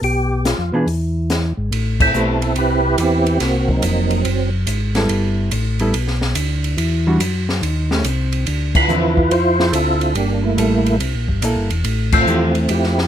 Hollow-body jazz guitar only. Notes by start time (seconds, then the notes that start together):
0.74 E3 B3 D4 G#4
2.15 A3 C4 G4 B4
4.96 G3 B3 E4 A4
5.80 G3 B3 E4 A4
7.07 E3 G3 D4 F#4
7.91 D#3 A3 C#4 G4
8.90 D3 F3 C4 E4
10.57 G3 A4
11.43 A#3 E4 A4
12.28 F3 A3 E4 G4